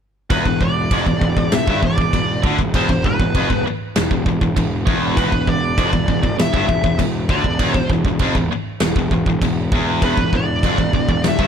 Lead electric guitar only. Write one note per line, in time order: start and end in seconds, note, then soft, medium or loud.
0.31 0.62 B4 medium
0.61 1.54 D5 loud
1.55 1.82 E5 loud
1.86 2.41 D5 medium
2.75 3.05 C5 loud
3.06 3.62 B4 loud
5.17 5.45 B4 medium
5.49 6.35 D5 loud
6.41 6.96 E5 loud
7.30 7.73 D5 loud
7.73 7.87 C5 loud
10.04 10.34 B4 medium
10.36 11.21 D5 loud
11.28 11.47 E5 loud